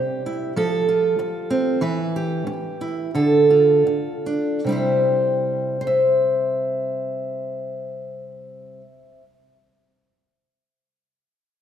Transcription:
Already playing: G3 G4 C5
0.26 E4
0.56 F3 A4
0.89 F4
1.19 muted steel-string acoustic guitar stroke
1.50 C4
1.81 E3 B4
2.16 G4
2.47 muted steel-string acoustic guitar stroke
2.81 E4
3.15 D3 A4
3.50 F4
3.87 muted steel-string acoustic guitar stroke
4.26 D4
4.64 C3 G3
4.69 E4 G4 C5
5.81 C5
5.87 E5

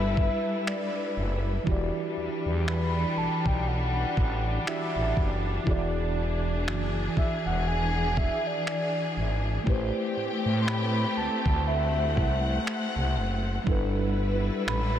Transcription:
Already playing: G1 G3 D4 E4 A4 B4 E5
0.17 kick
0.67 D5, finger snap
1.17 F#1
1.64 E1 E3 G3 D4 E4 F#4, kick
1.69 G4 D5
2.17 E2
2.46 E2
2.67 B5, finger snap
3.17 B1 A5
3.46 B1 G5, kick
3.68 F#5
4.17 A1, kick
4.65 E3 E4 F#4 G4 D5 E5, finger snap
4.96 A1
5.17 F#1, kick
5.64 E1 E3 E4 F#4 G#4, kick
5.69 G#4 D5
6.67 F#1, finger snap
7.17 E5, kick
7.46 E1 F#5
7.67 G#5
8.17 E5, kick
8.47 D5
8.67 D5, finger snap
9.17 G#1
9.64 A1 A3 C4 E4 G4, kick
9.70 B4 C5
10.17 A2
10.46 A2
10.61 C6
10.67 B5, finger snap
11.17 D2 A5
11.46 D2, kick
11.67 E5 F#5
12.17 C2, kick
12.67 finger snap
12.96 C2
13.17 F#1
13.64 G1 G3 D4 E4 B4, kick
13.69 A4 B4
14.67 A1 B5, finger snap

